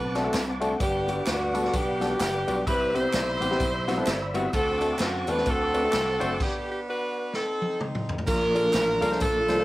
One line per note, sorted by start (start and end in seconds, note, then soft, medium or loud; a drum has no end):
0.00 0.27 B1 loud
0.00 0.78 C4 medium
0.00 0.58 F#4 medium
0.00 0.61 B4 loud
0.00 2.63 F#5 medium
0.00 0.77 A5 medium
0.00 2.62 D6 medium
0.15 0.20 A3 medium
0.15 0.20 C4 medium
0.15 0.20 D4 medium
0.15 0.20 F#4 medium
0.15 0.20 A4 loud
0.15 snare soft
0.15 ride medium
0.15 tambourine medium
0.23 0.34 A3 medium
0.23 0.34 C4 medium
0.23 0.34 D4 medium
0.23 0.34 F#4 medium
0.23 0.34 A4 medium
0.33 0.74 C2 medium
0.33 snare loud
0.33 clap loud
0.33 ride medium
0.33 tambourine loud
0.60 0.71 A3 medium
0.60 0.71 C4 medium
0.60 0.71 D4 medium
0.60 0.71 F#4 medium
0.60 0.71 A4 loud
0.60 ride medium
0.60 tambourine medium
0.80 1.20 G1 loud
0.80 1.50 G2 medium
0.80 1.26 B3 medium
0.80 1.26 D4 medium
0.80 1.24 G4 medium
0.80 2.64 B4 medium
0.80 4.49 D5 medium
0.80 kick loud
0.80 ride medium
0.80 tambourine medium
1.07 1.18 G3 medium
1.07 1.18 B3 medium
1.07 1.18 D4 medium
1.07 1.18 F#4 medium
1.07 1.18 G4 medium
1.07 ride medium
1.07 tambourine medium
1.26 1.67 D2 medium
1.26 1.73 B3 medium
1.26 1.74 D4 medium
1.26 1.74 F#4 medium
1.26 snare loud
1.26 clap medium
1.26 ride medium
1.26 tambourine medium
1.54 1.59 G3 medium
1.54 1.59 B3 medium
1.54 1.59 D4 medium
1.54 1.60 F#4 medium
1.54 1.60 A4 medium
1.54 ride medium
1.54 tambourine medium
1.63 1.74 G3 medium
1.63 1.74 B3 medium
1.63 1.74 D4 medium
1.63 1.74 F#4 medium
1.63 1.74 A4 medium
1.63 snare soft
1.73 2.13 B1 loud
1.73 2.20 B3 medium
1.73 2.20 D4 medium
1.73 2.20 G4 loud
1.73 kick loud
1.73 ride medium
1.73 tambourine medium
2.00 2.06 G3 medium
2.00 2.06 B3 medium
2.00 2.06 D4 medium
2.00 2.06 F#4 medium
2.00 2.06 A4 medium
2.00 snare soft
2.00 ride medium
2.00 tambourine medium
2.10 2.20 G3 medium
2.10 2.20 B3 medium
2.10 2.20 D4 medium
2.10 2.21 F#4 medium
2.10 2.21 G4 medium
2.20 2.44 F#1 loud
2.20 2.64 B3 medium
2.20 2.64 D4 medium
2.20 2.64 G4 medium
2.20 snare medium
2.20 clap loud
2.20 ride medium
2.20 tambourine loud
2.47 2.64 B1 medium
2.47 2.57 G3 medium
2.47 2.57 B3 medium
2.47 2.58 D4 medium
2.47 2.58 F#4 medium
2.47 2.58 G4 medium
2.47 ride medium
2.47 tambourine medium
2.66 3.07 C2 loud
2.66 3.37 C3 medium
2.66 2.93 E4 medium
2.66 2.94 G4 medium
2.66 2.94 B4 loud
2.66 6.36 C5 medium
2.66 4.51 B5 medium
2.66 4.51 E6 medium
2.66 kick loud
2.66 ride medium
2.66 tambourine medium
2.94 3.04 G3 medium
2.94 3.04 B3 medium
2.94 3.04 C4 medium
2.94 4.30 E4 medium
2.94 3.04 E4 medium
2.94 3.04 G4 medium
2.94 4.31 G4 medium
2.94 4.34 C5 loud
2.94 ride medium
2.94 tambourine medium
3.13 3.37 B1 medium
3.13 snare loud
3.13 clap loud
3.13 ride medium
3.13 tambourine loud
3.40 3.58 A1 medium
3.40 3.46 G3 medium
3.40 3.46 B3 medium
3.40 3.46 C4 medium
3.40 3.46 E4 medium
3.40 3.46 G4 medium
3.40 ride medium
3.40 tambourine medium
3.51 3.61 G3 medium
3.51 3.61 B3 medium
3.51 3.61 C4 medium
3.51 3.61 E4 medium
3.51 3.61 G4 loud
3.51 snare soft
3.60 4.00 B1 loud
3.60 kick loud
3.60 ride medium
3.60 tambourine medium
3.88 3.93 G3 medium
3.88 3.93 B3 medium
3.88 3.93 C4 medium
3.88 3.93 E4 medium
3.88 3.93 F#4 loud
3.88 snare soft
3.88 ride medium
3.88 tambourine medium
3.97 4.07 G3 medium
3.97 4.07 B3 medium
3.97 4.07 C4 medium
3.97 4.07 E4 medium
3.97 4.07 A4 medium
4.07 4.46 G1 loud
4.07 snare loud
4.07 clap loud
4.07 ride medium
4.07 tambourine loud
4.34 4.44 G3 loud
4.34 4.44 B3 medium
4.34 4.44 C4 medium
4.34 4.44 E4 medium
4.34 4.44 F#4 loud
4.34 ride medium
4.34 tambourine medium
4.53 4.93 D2 loud
4.53 5.24 D3 medium
4.53 5.43 C4 medium
4.53 5.00 F#4 medium
4.53 4.97 A4 loud
4.53 6.38 F#5 medium
4.53 6.38 A5 medium
4.53 6.38 D6 medium
4.53 kick loud
4.53 ride medium
4.53 tambourine medium
4.81 4.91 A3 medium
4.81 4.91 C4 medium
4.81 4.91 D4 medium
4.81 4.91 F#4 medium
4.81 4.91 A4 medium
4.81 ride medium
4.81 tambourine medium
4.99 5.24 F#2 medium
4.99 5.27 F#4 loud
4.99 snare loud
4.99 clap loud
4.99 ride medium
4.99 tambourine medium
5.27 5.44 E2 medium
5.27 5.33 A3 medium
5.27 5.33 C4 medium
5.27 5.33 D4 medium
5.27 5.33 F#4 medium
5.27 5.33 A4 medium
5.27 5.48 B4 loud
5.27 ride medium
5.27 tambourine medium
5.37 5.47 A3 medium
5.37 5.47 C4 medium
5.37 5.47 D4 medium
5.37 5.47 F#4 medium
5.37 5.48 A4 medium
5.37 snare soft
5.46 5.86 D2 loud
5.46 6.37 C4 medium
5.46 6.37 F#4 medium
5.46 6.41 A4 loud
5.46 kick loud
5.46 ride medium
5.46 tambourine medium
5.74 5.79 A3 medium
5.74 5.79 C4 medium
5.74 5.79 D4 medium
5.74 5.79 F#4 medium
5.74 5.79 B4 medium
5.74 ride medium
5.74 tambourine medium
5.83 5.94 A3 medium
5.83 5.94 C4 medium
5.83 5.94 D4 medium
5.83 5.94 F#4 medium
5.83 5.94 A4 medium
5.93 6.17 C2 medium
5.93 snare loud
5.93 clap loud
5.93 ride medium
5.93 tambourine loud
6.19 6.37 F#1 medium
6.19 6.30 A3 medium
6.19 6.30 C4 medium
6.19 6.30 D4 medium
6.19 6.31 F#4 medium
6.19 6.30 C5 loud
6.19 ride medium
6.19 tambourine medium
6.40 7.30 B3 medium
6.40 6.87 D4 medium
6.40 6.68 G4 loud
6.40 kick loud
6.40 crash loud
6.69 6.78 G4 medium
6.87 7.31 D4 medium
6.87 7.31 F#4 medium
6.87 7.31 B4 loud
7.34 8.23 C4 medium
7.34 8.23 D#4 medium
7.34 7.81 A4 medium
7.34 snare medium
7.62 high tom medium
7.81 mid tom medium
7.95 mid tom medium
8.09 floor tom loud
8.18 floor tom loud
8.27 8.67 A#1 loud
8.27 8.98 A#2 medium
8.27 9.64 F3 medium
8.27 9.64 A#3 medium
8.27 9.64 D4 medium
8.27 9.17 D4 medium
8.27 9.64 F4 medium
8.27 9.17 F4 medium
8.27 9.17 A#4 loud
8.27 kick loud
8.27 crash loud
8.27 tambourine medium
8.54 8.64 A#3 medium
8.54 8.64 D4 medium
8.54 8.65 F4 medium
8.54 8.65 A4 medium
8.54 8.65 A#4 medium
8.54 ride medium
8.54 tambourine medium
8.73 8.98 A1 medium
8.73 snare loud
8.73 clap loud
8.73 ride medium
8.73 tambourine loud
9.01 9.18 C2 medium
9.01 9.06 A#3 medium
9.01 9.06 D4 medium
9.01 9.07 F4 medium
9.01 9.07 A4 medium
9.01 9.07 A#4 loud
9.01 ride medium
9.01 tambourine medium
9.11 9.21 A#3 medium
9.11 9.21 D4 medium
9.11 9.21 F4 medium
9.11 9.22 A4 medium
9.11 9.21 C5 medium
9.11 snare soft
9.20 9.49 A#1 medium
9.20 9.64 D4 medium
9.20 9.64 F4 medium
9.20 9.64 A4 loud
9.20 kick loud
9.20 ride medium
9.20 tambourine medium
9.48 9.64 C2 medium
9.48 9.53 A#3 medium
9.48 9.53 D4 medium
9.48 9.54 F4 medium
9.48 9.54 A4 medium
9.48 9.54 C5 medium
9.48 snare soft
9.48 ride medium
9.48 tambourine medium
9.59 9.64 A#3 medium
9.59 9.64 D4 medium
9.59 9.64 F4 medium
9.59 9.64 A4 medium
9.59 9.64 C5 medium